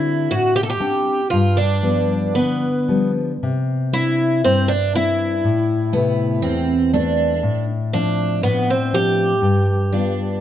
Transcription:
Already playing: D3 C4 D4 E4 F#4
0.31 A2 F#4
0.56 G4
0.63 A4
0.70 G4
0.80 C4 D4 F#5
1.30 G2 F4
1.57 D4
1.82 F3 G3 B3
2.34 D3 B3
2.88 F3 G3 B3
3.43 C3
3.93 C4 D4 E4
4.44 G2 C4
4.68 D4
4.95 C4 D4 E4
5.44 A2
5.92 C3 A3 B3 B4
6.42 E2 C4
6.93 A3 B3 C4 D4
7.43 A2
7.93 F3 C4 D4
8.43 A2 B3
8.70 C4
8.93 F3 C4 D4 G4
9.42 G2
9.92 G3 B3 D4 F4

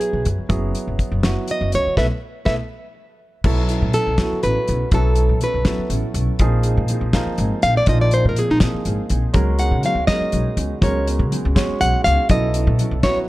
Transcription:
Already playing: F#3 B3 E4 G#4 B4
0.01 closed hi-hat
0.13 B1
0.25 F#2, closed hi-hat
0.39 muted upright bass stroke
0.49 F#1 F#3 B3 E4 G#4, kick, closed hi-hat
0.75 closed hi-hat
0.87 F#1
0.99 kick, closed hi-hat
1.12 F#1
1.23 F#3 B3 E4 F#4, snare, closed hi-hat
1.48 D#5, closed hi-hat
1.61 F#1
1.72 C#2 C#5, closed hi-hat
1.86 muted upright bass stroke
1.97 B1 A3 B3 E4 A4 B4 E5, kick, snare
2.45 B1 A3 B3 E4 A4 B4 E5, kick, snare
3.44 B1 F#3 B3 C#4 E4 A4, kick, crash
3.69 C#4 E4 A4, closed hi-hat
3.82 B2
3.93 F#3 C#4 E4 A4, closed hi-hat
4.07 B1
4.18 F#3 B3 C#4 E4 F#4 A4, kick, snare, closed hi-hat
4.32 muted upright bass stroke
4.43 A1 F#3 C#4 E4 A4 B4, closed hi-hat
4.68 B1 C#4 E4 A4, closed hi-hat
4.91 B1 F#3 B3 C#4 E4 A4, kick, closed hi-hat
5.16 C#4 E4 A4, closed hi-hat
5.29 B2
5.41 F#3 C#4 E4 A4 B4, closed hi-hat
5.54 B1
5.65 F#3 B3 C#4 E4 A4, kick, snare, closed hi-hat
5.78 muted upright bass stroke
5.90 A1 F#3 C#4 E4 A4, closed hi-hat
6.14 B1 C#4 E4 A4, closed hi-hat
6.39 A#1 F3 A#3 C4 D#4 G#4, kick, closed hi-hat
6.63 C4 D#4 G#4, closed hi-hat
6.77 A#2
6.88 F3 C4 D#4 G#4, closed hi-hat
7.01 A#1
7.13 F3 A#3 C4 D#4 G#4 A#4, kick, snare, closed hi-hat
7.26 muted upright bass stroke
7.38 G#1 F3 C4 D#4 G#4, closed hi-hat
7.62 A#1 C4 D#4 G#4 F5, closed hi-hat
7.77 D5
7.86 A#1 F3 A#3 C4 D#4 F4 G#4 D#5, kick, closed hi-hat
8.01 D5
8.11 C4 D#4 G#4 C5, closed hi-hat
8.25 A#2 A#4
8.36 F3 C4 D#4 G#4, closed hi-hat
8.50 A#1 D#4
8.60 F3 A#3 C4 D#4 G#4, kick, snare, closed hi-hat
8.74 muted upright bass stroke
8.85 G#1 F3 C4 D#4 G#4, closed hi-hat
9.10 A#1 C4 D#4 G#4, closed hi-hat
9.33 C#2 F#3 G#3 B3 C#4 D#4 F#4 G#4 A#4, kick, closed hi-hat
9.59 B3 D#4 G#4 F#5, closed hi-hat
9.71 C#3
9.83 F#3 B3 D#4 G#4 F5, closed hi-hat
9.95 C#2
10.07 F#3 G#3 B3 C#4 D#4 F#4 G#4 A#4 D#5, kick, snare, closed hi-hat
10.20 muted upright bass stroke
10.32 B1 F#3 B3 D#4 G#4, closed hi-hat
10.57 C#2 B3 D#4 G#4, closed hi-hat
10.81 C#2 F#3 G#3 B3 C#4 D#4 F#4 G#4 A#4 C#5, kick, closed hi-hat
11.06 B3 D#4 G#4, closed hi-hat
11.19 C#3
11.31 F#3 B3 D#4 G#4, closed hi-hat
11.45 C#2
11.55 F#3 G#3 B3 C#4 D#4 F#4 G#4 C#5, kick, snare, closed hi-hat
11.69 muted upright bass stroke
11.81 B1 F#3 B3 D#4 G#4 F#5, closed hi-hat
12.04 C#2 B3 D#4 G#4 F5, closed hi-hat
12.29 B1 F#3 B3 C#4 E4 A4 D#5, kick, closed hi-hat
12.54 C#4 E4 A4, closed hi-hat
12.67 B2
12.79 F#3 C#4 E4 A4, closed hi-hat
12.91 B1
13.03 F#3 B3 C#4 E4 F#4 A4 C#5, kick, snare, closed hi-hat
13.17 muted upright bass stroke

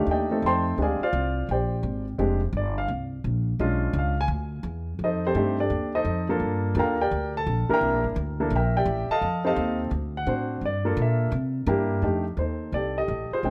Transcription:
Already playing: A3 D4 D#4 G4
0.07 D#2
0.11 G4 D5 D#5 G5
0.31 A3 C4 D#4 A4
0.42 F2 C6
0.47 C5 G5 A5
0.78 D2 G#3 C4 D4 G4
0.82 G#4 D5 F5 G#5
1.00 F4 C5 D5 F5, muted upright bass stroke
1.13 C2
1.49 A#1 G4 C5 D5 G5
1.83 G#1
2.18 F1 G#3 C4 D4 G4
2.53 G1
2.57 D5
2.78 F5
2.88 C2
3.24 A#1
3.59 B1 G#3 C#4 D4 F4
3.93 C#2
3.99 F5
4.21 G#5
4.28 D2
4.63 E2
4.99 F2
5.04 D#4 A4 C5 D#5
5.27 C4 G4 A4 C5
5.35 G2 A3 D4 D#4 G4
5.60 D4 G4 A4 D5
5.70 D#2
5.95 D#4 A4 C5 D#5
6.05 F2
6.29 A#3 D4 F4 A4
6.40 G2
6.75 D#2 A#3 D4 F4 A4
6.79 A#4 F5 G5 A#5
7.01 G4 A#4 D5 G5
7.11 D2
7.37 A4 A5
7.47 A#1
7.69 A#3 D4 E4 A#4, muted upright bass stroke
7.73 A#4 E5 G5 A#5
7.81 C2
7.93 A#1
8.04 G1
8.16 D2
8.40 A#3 D4 E4 A4
8.50 A#1
8.55 A#4 E5 G5 A#5
8.77 G4 D5 E5 G5
8.85 A1
9.09 A4 D#5 F5 A5, muted upright bass stroke
9.21 F2
9.45 C4 D#4 G4 A4 D#5 F5 A5
9.56 D#2
9.91 D2
10.17 F#5
10.27 A2 C4 D4 F#4 C5
10.61 G2
10.66 D5
10.85 A#3 D4 F4 A4
10.97 A#2
11.02 E5
11.32 C3
11.66 G2 A#3 D4 E4 G4
12.02 F2 A3 D4 D#4 G4
12.37 D#2 D#4 A4 C5
12.72 C2 G4 A4 D5
12.98 G4 A4 D#5
13.08 A1
13.31 F4 G#4 C5, muted upright bass stroke
13.43 A#1 G#3 C4 D4 G5

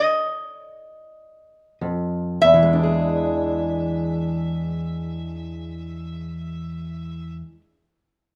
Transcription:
Already playing: D#5
1.81 F2
2.42 E2 E5
2.54 E3
2.63 G#3
2.73 D4
2.83 G#4

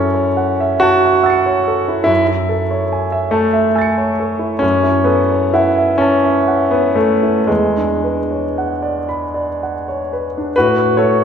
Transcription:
Already playing: F#2 C#4 E4 A4
0.15 C#5
0.37 F#5
0.61 E5
0.80 F#4 A5
1.04 E5
1.23 F#5 E6 A6
1.30 C#7
1.46 C#5
1.68 A4
1.88 E4
2.04 F#2 E4
2.27 E4
2.49 A4
2.71 C#5
2.92 G#5
3.12 E5
3.31 A3 A5
3.53 E5
3.75 G#5 E6 A6
3.82 C#7
3.98 C#5
4.20 A4
4.39 E4
4.59 F#2 C#4
4.83 E4
5.04 B3 A4
5.32 C#5
5.54 E4 F#5
5.78 E5
5.98 C#4 A5
6.24 E5
6.48 F#5
6.71 B3 C#5
6.95 A3 A4
7.23 E4
7.47 E2 G#3
7.77 D4
8.04 B4
8.31 C#5
8.58 F#5
8.83 D5
9.09 B5
9.34 D5
9.63 F#5
9.88 C#5
10.13 B4
10.38 D4
10.56 A2 F#4 B4
10.97 A3 A4 C#5

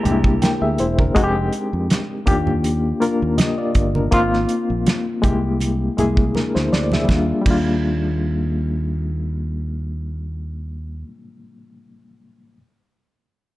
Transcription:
Already playing: G#3 A#3 E4 G4 A#4
0.03 C2 G#3 A#3 D4 G4, closed hi-hat, muted conga, low conga
0.12 E4
0.24 kick
0.42 A#4 G5, snare, closed hi-hat, high conga
0.62 D2 G#4 E5
0.78 E1 E4 C5, closed hi-hat
0.99 D4 A#4, kick, high conga
1.15 F1 G#3 C4 D#4 F#4, kick, closed hi-hat, muted conga
1.24 G4
1.53 closed hi-hat
1.73 F2
1.90 snare, closed hi-hat, high conga
2.26 D#2 A#3 D4 F4 G4, kick, closed hi-hat, low conga
2.47 low conga
2.64 closed hi-hat, muted conga
3.00 A#3 D4 F4 A#4, closed hi-hat, muted conga
3.22 D#2
3.38 G4 D#5, snare, closed hi-hat, high conga
3.58 F4 D5
3.75 G1, kick, closed hi-hat
3.95 D4 A#4, high conga
4.11 G#1 A#3 C4 D#4 F4, kick, closed hi-hat, muted conga
4.33 snare
4.49 closed hi-hat
4.70 A#1
4.86 snare, closed hi-hat, high conga
5.22 C2 G#3 A#3 E4 G4, kick, closed hi-hat, low conga
5.60 closed hi-hat, muted conga
5.97 C2 G#3 A#3 E4 G#4, closed hi-hat, muted conga, low conga
6.17 kick
6.35 D4 A#4, snare, high conga
6.55 D2 E4 C5, snare
6.72 D2 D5, snare
6.92 G#4 E5, snare, high conga
7.05 G3 A#3
7.09 D#2 D4, kick, snare, muted conga
7.14 F4
7.41 G3 A#3
7.46 D#2 D4, kick, crash, muted conga
7.50 F4

